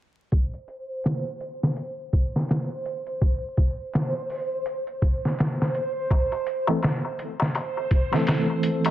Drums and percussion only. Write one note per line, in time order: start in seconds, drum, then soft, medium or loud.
0.32 kick medium
0.32 closed hi-hat medium
0.54 closed hi-hat soft
0.68 closed hi-hat medium
1.04 snare loud
1.04 closed hi-hat medium
1.40 closed hi-hat medium
1.63 snare soft
1.76 closed hi-hat medium
2.13 kick medium
2.13 closed hi-hat medium
2.36 snare soft
2.49 snare loud
2.49 closed hi-hat medium
2.85 closed hi-hat medium
3.07 closed hi-hat soft
3.21 kick medium
3.21 closed hi-hat medium
3.57 kick medium
3.57 closed hi-hat medium
3.93 snare loud
3.93 closed hi-hat medium
4.30 open hi-hat medium
4.66 closed hi-hat medium
4.87 closed hi-hat soft
5.02 kick medium
5.02 closed hi-hat medium
5.25 snare soft
5.39 snare loud
5.39 closed hi-hat medium
5.62 snare medium
5.74 closed hi-hat medium
6.10 kick medium
6.10 closed hi-hat medium
6.10 darbuka tek medium
6.32 closed hi-hat soft
6.32 darbuka tek soft
6.47 closed hi-hat medium
6.67 darbuka tek medium
6.83 snare loud
6.83 closed hi-hat medium
6.83 darbuka tek medium
7.05 darbuka tek soft
7.19 closed hi-hat medium
7.40 snare medium
7.40 darbuka tek medium
7.55 closed hi-hat medium
7.55 darbuka tek medium
7.77 darbuka tek soft
7.91 kick medium
7.91 closed hi-hat medium
8.13 snare soft
8.13 darbuka tek medium
8.27 snare loud
8.27 closed hi-hat medium
8.27 darbuka tek medium
8.50 darbuka tek soft
8.63 closed hi-hat medium
8.85 closed hi-hat soft
8.85 darbuka tek medium